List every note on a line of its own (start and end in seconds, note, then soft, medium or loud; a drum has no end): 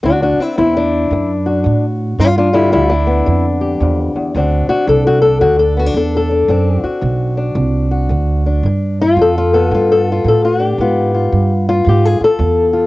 0.03 0.54 D2 medium
0.03 0.36 D2 medium
0.03 0.21 D4 medium
0.03 0.22 F#4 medium
0.22 0.40 D4 medium
0.22 0.42 F#4 medium
0.38 0.56 C4 medium
0.38 muted upright bass stroke soft
0.42 0.57 E4 medium
0.57 1.08 D2 medium
0.57 1.10 E2 medium
0.57 0.76 C4 medium
0.57 1.30 E4 medium
0.77 1.84 D4 medium
1.11 1.62 D2 medium
1.11 1.64 F#2 medium
1.46 2.17 F#4 soft
1.64 2.15 D2 medium
1.64 2.18 A2 medium
2.19 2.71 G2 medium
2.19 2.70 G2 medium
2.19 2.25 D4 medium
2.19 2.37 F4 medium
2.38 2.48 D4 medium
2.38 2.92 F4 medium
2.53 6.50 D3 soft
2.53 2.71 G3 medium
2.53 2.71 E4 medium
2.72 3.25 D2 medium
2.72 3.23 G2 medium
2.72 2.91 G3 medium
2.72 3.45 E4 medium
2.89 3.98 D4 medium
3.07 4.32 B3 soft
3.26 3.79 F2 medium
3.26 3.77 G2 medium
3.61 4.32 G4 soft
3.80 4.12 E2 medium
3.80 4.15 F2 medium
4.15 4.35 E2 medium
4.15 muted upright bass stroke soft
4.35 4.66 D2 medium
4.35 4.85 D2 medium
4.35 6.48 C4 soft
4.35 4.70 D4 soft
4.35 4.69 F#4 soft
4.67 5.24 D4 soft
4.67 4.88 F#4 medium
4.67 muted upright bass stroke soft
4.87 5.40 C2 medium
4.87 5.39 D2 medium
4.87 5.06 A4 medium
5.07 5.21 F#4 medium
5.22 5.77 D4 soft
5.22 5.41 A4 medium
5.41 5.94 D2 medium
5.41 5.92 D2 medium
5.41 5.59 F#4 medium
5.59 5.79 A4 medium
5.77 5.86 B3 soft
5.77 5.96 F#4 medium
5.86 6.30 D4 soft
5.94 6.46 D2 medium
5.94 6.47 E2 medium
5.94 6.14 A4 medium
6.17 6.83 A4 medium
6.31 6.50 D4 soft
6.48 6.99 D2 medium
6.48 6.80 F#2 medium
6.48 8.62 C4 soft
6.48 7.37 D4 soft
6.83 7.90 F#4 soft
6.83 muted upright bass stroke soft
7.01 7.55 B1 medium
7.01 7.52 D2 medium
7.37 8.46 D4 soft
7.55 8.08 C2 medium
7.55 8.06 D2 medium
7.91 8.62 F#4 soft
8.09 8.62 D2 medium
8.09 8.60 D2 medium
8.46 9.01 D4 soft
8.63 9.16 G2 medium
8.63 9.15 G2 medium
9.01 9.37 F4 medium
9.17 9.69 F2 medium
9.17 9.68 G2 medium
9.21 9.53 A4 medium
9.38 9.73 F4 medium
9.53 10.77 B3 soft
9.53 9.90 A4 medium
9.71 10.23 G2 medium
9.71 10.21 G2 medium
9.71 10.09 F4 medium
9.92 10.26 A4 medium
10.12 10.59 F4 medium
10.24 10.75 G2 medium
10.24 10.77 A2 medium
10.24 10.44 A4 medium
10.45 10.66 F#4 medium
10.60 10.81 D4 soft
10.66 11.51 G4 medium
10.78 11.30 G#2 medium
10.78 11.29 G#2 medium
10.78 12.87 B3 medium
10.78 11.13 F4 soft
11.14 11.68 F4 soft
11.32 11.84 G2 medium
11.69 12.19 F4 medium
11.85 12.35 G#2 medium
11.85 12.18 G#2 medium
11.89 12.05 G4 medium
12.05 12.22 G#4 medium
12.20 12.72 F4 soft
12.20 12.87 A4 loud
12.20 muted upright bass stroke soft
12.39 12.87 E2 medium
12.39 12.87 G#2 medium
12.73 12.87 F4 soft